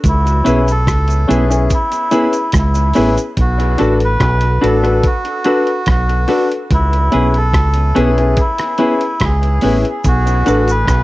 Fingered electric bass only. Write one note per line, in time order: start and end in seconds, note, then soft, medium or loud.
0.05 0.41 C#2 loud
0.47 0.88 B1 medium
0.88 1.25 C#2 medium
1.30 1.67 B1 medium
2.54 2.91 C#2 loud
2.98 3.16 A1 medium
3.38 3.75 B1 medium
3.81 4.17 A1 medium
4.21 4.58 B1 medium
4.64 5.00 A1 medium
5.88 6.25 B1 medium
6.72 7.08 C#2 medium
7.14 7.55 B1 medium
7.55 7.92 C#2 medium
7.97 8.34 B1 medium
9.21 9.58 C#2 medium
9.64 9.83 A1 medium
10.05 10.42 B1 loud
10.48 10.84 A1 medium
10.88 11.03 B1 medium